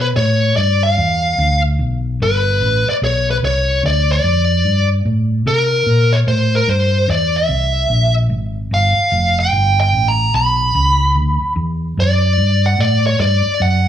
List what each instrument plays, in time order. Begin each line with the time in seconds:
Already playing: fingered electric bass B2
0.01 lead electric guitar B4
0.16 fingered electric bass A2, lead electric guitar C#5
0.56 fingered electric bass G2, lead electric guitar D5
0.83 lead electric guitar F5
0.98 fingered electric bass E2
1.38 fingered electric bass D2
1.79 fingered electric bass B1
2.20 fingered electric bass G1, lead electric guitar B4
2.61 fingered electric bass A1
2.90 lead electric guitar D5
3.02 fingered electric bass B1, lead electric guitar C#5
3.31 lead electric guitar B4
3.43 fingered electric bass C2, lead electric guitar C#5
3.83 fingered electric bass D2, lead electric guitar D5
4.12 lead electric guitar D5
4.24 fingered electric bass F2
4.65 fingered electric bass G2
5.05 fingered electric bass A2
5.46 fingered electric bass C3, lead electric guitar A#4
5.86 fingered electric bass A#2
6.13 lead electric guitar C#5
6.27 fingered electric bass A2, lead electric guitar C5
6.55 lead electric guitar A#4
6.68 fingered electric bass G2, lead electric guitar C5
7.08 fingered electric bass E2, lead electric guitar D5
7.36 lead electric guitar E5
7.49 fingered electric bass C2
7.90 fingered electric bass A#1
8.30 fingered electric bass G#1
8.71 fingered electric bass G1, lead electric guitar F5
8.97 muted fingered electric bass stroke
9.12 fingered electric bass F1
9.40 lead electric guitar G5
9.53 fingered electric bass G1
9.81 lead electric guitar G5
9.93 fingered electric bass A1
10.08 lead electric guitar A#5
10.34 fingered electric bass B1, lead electric guitar B5
10.75 fingered electric bass C#2
11.15 fingered electric bass D2
11.42 muted fingered electric bass stroke
11.56 fingered electric bass E2
11.97 fingered electric bass F#2, lead electric guitar D5
12.38 fingered electric bass G2
12.66 lead electric guitar F#5
12.79 fingered electric bass A2, lead electric guitar D5
13.07 lead electric guitar C#5
13.20 fingered electric bass G2, lead electric guitar D5
13.46 muted fingered electric bass stroke
13.60 fingered electric bass F#2, lead electric guitar F#5